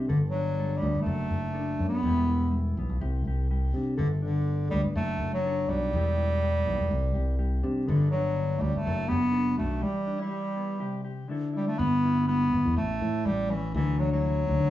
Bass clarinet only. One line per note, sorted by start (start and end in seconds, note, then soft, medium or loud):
0.08 0.19 D3 medium
0.30 0.79 F#3 medium
0.77 1.01 G3 medium
1.01 1.86 A3 medium
1.89 2.59 B3 medium
3.97 4.08 D3 medium
4.22 4.67 D3 medium
4.70 4.81 G3 medium
4.96 5.30 A3 medium
5.34 5.71 F#3 medium
5.69 7.64 G3 medium
7.87 8.10 D3 medium
8.11 8.60 F#3 medium
8.58 8.75 G3 medium
8.58 8.63 A3 medium
8.73 9.10 A3 loud
9.09 9.58 B3 loud
9.58 9.85 A3 medium
9.83 10.21 G3 medium
10.22 11.15 G3 medium
11.56 11.67 G3 medium
11.67 11.80 A3 medium
11.78 12.27 B3 loud
12.28 12.73 B3 medium
12.77 13.27 A3 medium
13.26 13.51 G3 medium
13.50 13.74 E3 medium
13.74 14.01 E3 medium
13.99 14.12 F#3 medium
14.13 14.70 F#3 loud